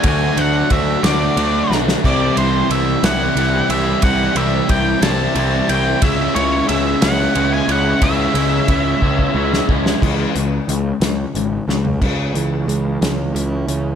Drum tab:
CC |------------|x-----------|------------|------------|
RD |x-x-x-x-x---|--x-x-x-x-x-|x-x-x-x-x-x-|x-x-x-x-x-x-|
HH |------------|------------|------------|------------|
SD |------o---oo|------o-----|------o-----|------o-----|
FT |------------|------------|------------|------------|
BD |o---o-------|o-----------|o---o-------|o-----------|

CC |------------|x-----------|x-----------|
RD |x-x-x-------|------------|------------|
HH |------------|--x-x-x-x---|--x-x-x-x-x-|
SD |---------o-o|------o---o-|------o-----|
FT |------------|-----------o|------------|
BD |o---o-oo--o-|o-----------|o-----------|